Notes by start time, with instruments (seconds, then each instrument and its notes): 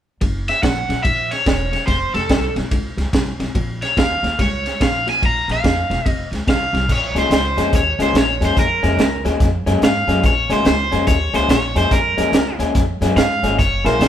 0.21 upright bass F#1, clean electric guitar F#2 C#3, kick, ride
0.48 overdriven electric guitar E5, snare, ride
0.62 upright bass A#1, clean electric guitar F#2 C#3, overdriven electric guitar F#5, kick, snare, ride
0.89 upright bass A#1, clean electric guitar F#2 C#3, snare, ride
1.03 upright bass A#1, clean electric guitar F#2 D#3, overdriven electric guitar E5, kick, ride
1.31 overdriven electric guitar C#5, snare, ride
1.46 upright bass E1, clean electric guitar F#2 C#3, kick, snare, ride
1.72 clean electric guitar F#2 C#3, snare, ride
1.87 upright bass F1, clean electric guitar F2 C3, overdriven electric guitar C5, kick, snare, ride
2.14 upright bass F1, overdriven electric guitar A4, snare, ride
2.29 upright bass C2, clean electric guitar F2 C3, kick, snare, ride
2.56 upright bass C2, clean electric guitar F2 C3, snare, ride
2.71 upright bass C#2, clean electric guitar F2 D3, kick, ride
2.97 upright bass C#2, snare, ride
3.13 upright bass C2, clean electric guitar F2 C3, kick, snare, ride
3.39 upright bass C2, clean electric guitar F2 C3, snare, ride
3.55 upright bass A#1, clean electric guitar A#2 F3, kick, ride
3.82 overdriven electric guitar C#5, snare, ride
3.97 upright bass D#2, clean electric guitar A#2 F3, overdriven electric guitar F5, kick, snare, ride
4.23 upright bass D#2, clean electric guitar A#2 F3, snare, ride
4.39 upright bass C#2, clean electric guitar A#2 G3, overdriven electric guitar C#5, kick, snare, ride
4.66 snare, ride
4.80 upright bass A#1, clean electric guitar A#2 F3, overdriven electric guitar F5, kick, snare, ride
5.07 clean electric guitar A#2 F3, overdriven electric guitar G#5, snare, ride
5.22 upright bass A#1, clean electric guitar A#2 F3, overdriven electric guitar A#5, kick, ride
5.48 upright bass A#1, snare, ride
5.52 overdriven electric guitar F5
5.64 upright bass F2, clean electric guitar A#2 F3, kick, snare, ride
5.90 upright bass E1, clean electric guitar A#2 F3, snare, ride
6.05 upright bass F1, clean electric guitar F2 C3, overdriven electric guitar D#5, kick, ride
6.31 upright bass C#2, snare, ride
6.47 upright bass C2, clean electric guitar F2 C3, overdriven electric guitar F5, kick, snare, ride
6.73 upright bass C2, clean electric guitar F2 C3, snare, ride
6.89 upright bass A#1, overdriven electric guitar C#5, kick, snare, crash
7.15 upright bass C#2, clean electric guitar A#2 F3 G#3 C#4, overdriven electric guitar C5, snare, closed hi-hat
7.30 upright bass C#2, overdriven electric guitar C5, snare, closed hi-hat
7.57 upright bass F2, clean electric guitar A#2 F3 G#3 C#4, snare, closed hi-hat
7.73 upright bass D#2, overdriven electric guitar C#5, kick, snare, closed hi-hat
7.99 upright bass C#2, clean electric guitar A#2 F3 G#3 C#4, overdriven electric guitar C5, snare, closed hi-hat
8.14 upright bass A#1, snare, closed hi-hat
8.18 overdriven electric guitar C#5
8.41 upright bass F2, clean electric guitar A#2 F3 G#3 C#4, snare, closed hi-hat
8.45 overdriven electric guitar C5
8.56 upright bass F2, overdriven electric guitar A#4, kick, snare, closed hi-hat
8.83 upright bass F2, clean electric guitar A#2 F3 G#3 C#4, snare, closed hi-hat
8.98 upright bass C#2, snare, closed hi-hat
9.25 upright bass D#2, clean electric guitar A#2 F3 G#3 C#4, snare, closed hi-hat
9.40 upright bass F2, kick, snare, closed hi-hat
9.66 upright bass F#2, clean electric guitar A#2 F3 G#3 C#4, snare, closed hi-hat
9.81 upright bass G#2, overdriven electric guitar F5, snare, closed hi-hat
10.07 upright bass F#2, clean electric guitar A#2 F3 G#3 C#4, snare, closed hi-hat
10.23 upright bass A#1, overdriven electric guitar C#5, kick, snare, closed hi-hat
10.49 upright bass C#2, clean electric guitar A#2 F3 G#3 C#4, overdriven electric guitar C5, snare, closed hi-hat
10.65 upright bass C#2, overdriven electric guitar C5, snare, closed hi-hat
10.92 upright bass F2, clean electric guitar A#2 F3 G#3 C#4, snare, closed hi-hat
11.07 upright bass D#2, overdriven electric guitar C#5, kick, snare, closed hi-hat
11.34 upright bass C#2, clean electric guitar A#2 F3 G#3 C#4, overdriven electric guitar C5, snare, closed hi-hat
11.49 upright bass A#1, overdriven electric guitar C#5, snare, closed hi-hat
11.75 upright bass F2, clean electric guitar A#2 F3 G#3 C#4, overdriven electric guitar C5, snare, closed hi-hat
11.91 upright bass F2, overdriven electric guitar A#4, kick, snare, closed hi-hat
12.17 upright bass F2, clean electric guitar A#2 F3 G#3 C#4, snare, closed hi-hat
12.32 upright bass C#2, snare, closed hi-hat
12.59 upright bass D#2, clean electric guitar A#2 F3 G#3 C#4, snare, closed hi-hat
12.75 upright bass F2, kick, snare, closed hi-hat
13.01 upright bass F#2, clean electric guitar A#2 F3 G#3 C#4, snare, closed hi-hat
13.16 upright bass G#2, overdriven electric guitar F5, snare, closed hi-hat
13.43 upright bass G#1, clean electric guitar A#2 F3 G#3 C#4, snare, closed hi-hat
13.59 upright bass F#1, overdriven electric guitar C#5, kick, snare, closed hi-hat
13.84 upright bass A#1, clean electric guitar F#2 E3 A#3 C#4, grand piano E4 G#4 A#4, overdriven electric guitar C5, snare, closed hi-hat
13.99 upright bass A#1, overdriven electric guitar C5, snare, closed hi-hat